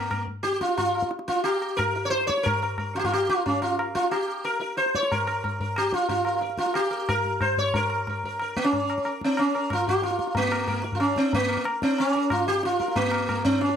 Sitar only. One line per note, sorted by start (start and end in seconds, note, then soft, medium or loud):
0.00 0.24 A#3 medium
0.10 0.26 A#4 soft
0.43 0.61 G4 medium
0.61 0.76 F4 medium
0.77 1.09 F4 medium
1.28 1.43 F4 medium
1.44 1.79 G4 medium
1.77 1.94 A#4 medium
1.95 2.10 A#4 soft
2.05 2.10 C#5 medium
2.10 2.27 C5 medium
2.27 2.45 C#5 medium
2.43 2.61 A#4 medium
2.62 2.77 A#4 soft
2.79 2.94 A#4 soft
2.96 2.99 F4 medium
2.96 3.03 G4 medium
3.04 3.12 F4 medium
3.13 3.29 G4 medium
3.30 3.45 F4 medium
3.46 3.62 C#4 medium
3.62 3.77 F4 medium
3.79 3.94 A#4 soft
3.95 4.11 F4 medium
4.11 4.46 G4 medium
4.45 4.58 A#4 medium
4.60 4.76 A#4 soft
4.77 4.95 C5 medium
4.95 5.12 C#5 medium
5.12 5.26 A#4 medium
5.27 5.43 A#4 soft
5.44 5.59 A#4 soft
5.61 5.76 A#4 soft
5.78 5.93 G4 medium
5.94 6.08 F4 medium
6.09 6.40 F4 medium
6.26 6.41 A#4 soft
6.42 6.58 A#4 soft
6.58 6.75 F4 medium
6.75 7.10 G4 medium
6.91 7.07 A#4 soft
7.09 7.41 A#4 medium
7.41 7.59 C5 medium
7.58 7.75 C#5 medium
7.75 8.08 A#4 medium
8.10 8.24 A#4 soft
8.25 8.40 A#4 soft
8.41 8.56 A#4 soft
8.57 8.65 A#3 medium
8.64 9.10 C#4 loud
9.06 9.21 A#4 soft
9.24 9.40 C4 medium
9.39 9.72 C#4 medium
9.55 9.70 A#4 soft
9.71 9.87 F4 medium
9.71 9.86 A#4 soft
9.87 10.03 G4 medium
9.87 10.00 A#4 soft
10.02 10.37 F4 medium
10.02 10.18 A#4 soft
10.37 10.82 A#3 medium
10.51 10.66 A#4 soft
10.67 10.82 A#4 soft
10.83 10.99 A#4 soft
10.95 11.00 F4 medium
11.00 11.17 C#4 medium
11.18 11.34 C4 medium
11.34 11.64 A#3 medium
11.51 11.64 A#4 soft
11.65 11.81 A#4 soft
11.83 11.99 C4 medium
12.00 12.31 C#4 medium
12.15 12.30 A#4 soft
12.32 12.47 F4 medium
12.48 12.64 G4 medium
12.65 12.97 F4 medium
12.80 12.94 A#4 soft
12.96 13.44 A#3 medium
13.28 13.43 A#4 soft
13.45 13.60 C4 medium
13.61 13.76 C#4 medium